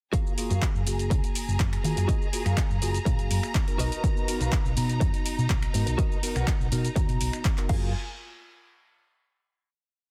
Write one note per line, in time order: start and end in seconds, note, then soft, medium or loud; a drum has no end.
0.13 0.35 A#3 medium
0.13 0.35 F4 medium
0.13 0.32 F#4 loud
0.13 0.35 F#4 medium
0.13 0.32 G#4 loud
0.13 3.76 G#4 medium
0.13 0.35 G#4 medium
0.13 0.32 A#4 loud
0.13 0.32 F5 loud
0.13 7.66 A#5 medium
0.13 kick loud
0.13 closed hi-hat medium
0.13 shaker soft
0.27 shaker soft
0.38 0.52 A#3 medium
0.38 0.53 F4 medium
0.38 0.53 F#4 medium
0.38 0.53 G#4 loud
0.38 open hi-hat loud
0.38 shaker medium
0.50 0.58 F#2 loud
0.50 0.80 F#4 medium
0.50 0.81 G#4 medium
0.50 0.81 A#4 medium
0.50 0.81 F5 medium
0.50 closed hi-hat soft
0.50 shaker soft
0.62 kick loud
0.62 clap loud
0.62 closed hi-hat medium
0.62 shaker soft
0.75 0.82 F#2 medium
0.75 shaker soft
0.86 1.13 F#1 loud
0.86 1.81 A#3 medium
0.86 1.82 F#4 medium
0.86 1.82 G#4 medium
0.86 open hi-hat medium
0.86 shaker medium
0.99 closed hi-hat soft
0.99 shaker soft
1.10 1.19 C#2 medium
1.10 muted clean electric guitar stroke medium
1.10 kick loud
1.10 closed hi-hat medium
1.10 shaker soft
1.23 muted clean electric guitar stroke soft
1.23 closed hi-hat soft
1.23 shaker soft
1.35 open hi-hat loud
1.35 shaker medium
1.48 1.55 F#1 medium
1.48 shaker soft
1.60 kick loud
1.60 clap loud
1.60 closed hi-hat medium
1.60 shaker soft
1.73 finger snap medium
1.73 closed hi-hat medium
1.73 shaker soft
1.84 1.92 D#3 loud
1.84 2.06 A#3 medium
1.84 2.06 F4 medium
1.84 2.06 F#4 medium
1.84 2.06 G#4 medium
1.84 muted clean electric guitar stroke soft
1.84 open hi-hat medium
1.84 shaker medium
1.96 2.04 F#2 medium
1.96 muted clean electric guitar stroke medium
1.96 closed hi-hat medium
1.96 shaker soft
2.08 2.23 A#3 medium
2.08 2.23 F4 medium
2.08 2.27 F#4 loud
2.08 2.23 F#4 medium
2.08 2.27 G#4 loud
2.08 2.23 G#4 medium
2.08 2.27 A#4 loud
2.08 2.28 D#5 loud
2.08 kick loud
2.08 closed hi-hat medium
2.08 shaker soft
2.22 shaker soft
2.33 2.47 A#3 medium
2.33 2.48 F4 medium
2.33 2.48 F#4 medium
2.33 2.48 G#4 loud
2.33 open hi-hat loud
2.33 shaker medium
2.45 2.53 F#2 loud
2.45 2.75 F#4 medium
2.45 2.76 G#4 medium
2.45 2.76 A#4 medium
2.45 2.76 F5 loud
2.45 finger snap medium
2.45 closed hi-hat soft
2.45 shaker soft
2.57 kick loud
2.57 clap loud
2.57 closed hi-hat medium
2.57 shaker soft
2.70 2.77 F#2 medium
2.70 shaker soft
2.82 2.97 F#1 loud
2.82 2.96 A#3 loud
2.82 2.96 F4 medium
2.82 2.97 F#4 medium
2.82 2.97 G#4 loud
2.82 open hi-hat loud
2.82 shaker medium
2.94 closed hi-hat soft
2.94 shaker soft
3.05 3.14 A#2 medium
3.05 3.64 A#3 medium
3.05 3.65 F#4 medium
3.05 3.65 G#4 medium
3.05 3.64 F5 medium
3.05 muted clean electric guitar stroke medium
3.05 kick loud
3.05 closed hi-hat medium
3.05 shaker soft
3.18 3.26 F#1 loud
3.18 muted clean electric guitar stroke soft
3.18 closed hi-hat soft
3.18 shaker soft
3.30 3.38 F#2 medium
3.30 open hi-hat loud
3.30 shaker medium
3.43 finger snap medium
3.43 shaker soft
3.55 kick loud
3.55 clap loud
3.55 closed hi-hat medium
3.55 shaker soft
3.67 3.90 B3 medium
3.67 3.90 D#4 medium
3.67 3.90 F#4 medium
3.67 3.91 A#4 medium
3.67 closed hi-hat medium
3.67 shaker soft
3.78 3.87 B1 loud
3.78 5.72 B3 medium
3.78 7.66 D#4 medium
3.78 4.28 F#4 medium
3.78 4.28 A#4 medium
3.78 4.28 B4 medium
3.78 4.28 D#5 loud
3.78 open hi-hat medium
3.78 shaker medium
3.92 closed hi-hat medium
3.92 shaker soft
4.03 4.25 B3 medium
4.03 4.25 D#4 medium
4.03 4.25 F#4 medium
4.03 4.25 A#4 medium
4.03 kick loud
4.03 closed hi-hat medium
4.03 shaker soft
4.17 shaker soft
4.28 4.42 B3 medium
4.28 4.43 D#4 medium
4.28 4.43 F#4 medium
4.28 4.43 A#4 loud
4.28 open hi-hat loud
4.28 shaker medium
4.40 4.48 B1 loud
4.40 4.71 F#4 medium
4.40 4.71 A#4 medium
4.40 4.71 B4 medium
4.40 4.71 F5 medium
4.40 closed hi-hat soft
4.40 shaker soft
4.52 kick loud
4.52 clap loud
4.52 closed hi-hat medium
4.52 shaker soft
4.65 4.72 B1 medium
4.65 shaker soft
4.76 5.03 B2 loud
4.76 5.71 B3 medium
4.76 5.71 D#4 medium
4.76 5.72 F#4 medium
4.76 5.72 A#5 medium
4.76 open hi-hat loud
4.76 shaker medium
4.89 closed hi-hat soft
4.89 shaker soft
5.00 5.09 F#2 loud
5.00 muted clean electric guitar stroke medium
5.00 kick loud
5.00 closed hi-hat medium
5.00 shaker soft
5.13 muted clean electric guitar stroke soft
5.13 closed hi-hat soft
5.13 shaker soft
5.26 open hi-hat loud
5.26 shaker medium
5.38 5.45 B2 loud
5.38 shaker soft
5.50 5.65 B1 medium
5.50 kick loud
5.50 clap loud
5.50 closed hi-hat medium
5.50 shaker soft
5.63 finger snap medium
5.63 closed hi-hat medium
5.63 shaker soft
5.74 5.82 G#2 loud
5.74 5.96 B3 medium
5.74 5.96 D#4 medium
5.74 5.96 F#4 medium
5.74 5.96 A#4 medium
5.74 muted clean electric guitar stroke soft
5.74 open hi-hat loud
5.74 shaker medium
5.86 5.94 B1 medium
5.86 muted clean electric guitar stroke medium
5.86 closed hi-hat medium
5.86 shaker soft
5.98 6.13 B3 medium
5.98 6.17 F#4 loud
5.98 6.13 F#4 medium
5.98 6.17 A#4 loud
5.98 6.17 B4 loud
5.98 6.18 D#5 loud
5.98 kick loud
5.98 closed hi-hat medium
5.98 shaker soft
6.12 shaker soft
6.23 6.38 B3 medium
6.23 6.38 D#4 medium
6.23 6.38 F#4 medium
6.23 6.38 A#4 loud
6.23 open hi-hat loud
6.23 shaker medium
6.35 6.43 B1 loud
6.35 6.66 F#4 medium
6.35 6.66 A#4 medium
6.35 6.66 B4 medium
6.35 6.66 F#5 medium
6.35 finger snap medium
6.35 closed hi-hat soft
6.35 shaker soft
6.47 kick loud
6.47 clap loud
6.47 closed hi-hat medium
6.47 shaker soft
6.60 6.67 B1 medium
6.60 shaker soft
6.71 6.87 B2 medium
6.71 6.86 B3 loud
6.71 6.86 D#4 medium
6.71 6.87 F#4 medium
6.71 6.87 A#4 loud
6.71 open hi-hat loud
6.71 shaker medium
6.85 closed hi-hat soft
6.85 shaker soft
6.95 7.04 D#2 medium
6.95 7.54 B3 medium
6.95 7.54 D#4 medium
6.95 7.55 F#4 medium
6.95 7.55 A#5 medium
6.95 muted clean electric guitar stroke medium
6.95 kick loud
6.95 closed hi-hat medium
6.95 shaker soft
7.08 7.16 B2 medium
7.08 muted clean electric guitar stroke soft
7.08 closed hi-hat soft
7.08 shaker soft
7.21 7.28 B1 medium
7.21 open hi-hat loud
7.21 shaker medium
7.33 finger snap medium
7.33 closed hi-hat soft
7.33 shaker soft
7.45 kick loud
7.45 clap loud
7.45 closed hi-hat medium
7.45 shaker soft
7.57 7.69 B3 medium
7.57 7.69 D#4 medium
7.57 7.69 F#4 medium
7.57 7.70 A#4 medium
7.57 clap soft
7.57 closed hi-hat medium
7.57 shaker soft
7.68 7.92 F#2 loud
7.68 7.87 A#3 medium
7.68 7.88 F4 medium
7.68 7.92 F4 medium
7.68 7.88 F#4 medium
7.68 7.92 G#4 medium
7.68 7.88 G#4 medium
7.68 7.92 A#4 medium
7.68 7.92 F5 medium
7.68 7.92 G#5 medium
7.68 kick loud
7.68 crash medium